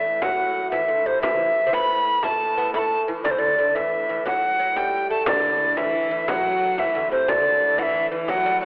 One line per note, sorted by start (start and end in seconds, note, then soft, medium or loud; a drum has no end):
0.00 1.23 A2 medium
0.00 0.23 E3 medium
0.00 0.24 E5 loud
0.05 frame drum soft
0.22 0.74 F#3 medium
0.22 0.71 F#5 loud
0.22 frame drum medium
0.71 0.88 E3 medium
0.71 1.08 E5 medium
0.71 frame drum medium
0.88 1.06 D3 medium
1.06 1.22 C3 medium
1.06 1.21 C5 medium
1.06 frame drum soft
1.22 5.26 A2 medium
1.22 1.68 E3 medium
1.22 1.76 E5 medium
1.22 frame drum medium
1.40 frame drum soft
1.67 1.73 C4 medium
1.73 2.23 B3 medium
1.73 2.25 B5 medium
1.73 frame drum medium
1.90 frame drum soft
2.06 frame drum soft
2.23 2.57 A3 medium
2.23 2.73 A5 medium
2.23 frame drum medium
2.40 frame drum soft
2.58 2.73 B3 medium
2.74 3.09 A3 medium
2.74 2.80 B5 medium
2.74 frame drum medium
2.79 3.02 A5 medium
2.91 frame drum soft
3.08 3.24 E3 medium
3.08 frame drum soft
3.24 3.31 D3 medium
3.24 3.32 D5 medium
3.24 frame drum medium
3.31 3.41 C5 medium
3.39 3.57 D3 medium
3.39 3.77 D5 medium
3.39 frame drum soft
3.59 3.75 D3 medium
3.75 4.08 E3 medium
3.75 4.26 E5 medium
3.75 frame drum soft
3.92 frame drum soft
4.09 4.26 E3 medium
4.09 frame drum soft
4.25 4.58 F#3 medium
4.25 4.78 F#5 medium
4.25 frame drum medium
4.59 4.75 F#3 medium
4.59 frame drum soft
4.76 5.11 G3 medium
4.76 5.10 G5 medium
4.76 frame drum medium
4.93 frame drum soft
5.10 5.26 A3 medium
5.10 5.26 A5 medium
5.26 8.65 A2 medium
5.26 5.78 D3 medium
5.26 5.74 D3 medium
5.26 5.78 D5 medium
5.26 frame drum loud
5.43 frame drum soft
5.77 6.24 E3 medium
5.77 6.10 E3 medium
5.77 6.30 E5 medium
5.77 frame drum medium
5.94 frame drum soft
6.11 6.28 E3 medium
6.11 frame drum soft
6.27 6.80 F#3 medium
6.27 6.79 F#3 medium
6.27 6.81 F#5 medium
6.27 frame drum medium
6.44 frame drum soft
6.78 7.11 E3 medium
6.78 6.95 E3 medium
6.78 7.11 E5 medium
6.78 frame drum medium
6.95 7.11 D3 medium
6.95 frame drum soft
7.11 7.30 C3 medium
7.11 7.28 C3 medium
7.11 7.31 C5 medium
7.11 frame drum soft
7.29 7.78 D3 medium
7.29 7.80 D3 medium
7.29 7.81 D5 medium
7.29 frame drum medium
7.46 frame drum soft
7.78 8.10 E3 medium
7.78 8.12 E3 medium
7.78 7.84 F#5 medium
7.78 frame drum medium
7.83 8.07 E5 medium
7.95 frame drum soft
8.11 8.29 E3 medium
8.11 8.32 E3 medium
8.28 8.45 F#3 medium
8.28 8.62 F#3 medium
8.28 8.60 F#5 medium
8.28 frame drum medium
8.46 8.62 G3 medium
8.46 frame drum soft
8.61 8.65 F#5 medium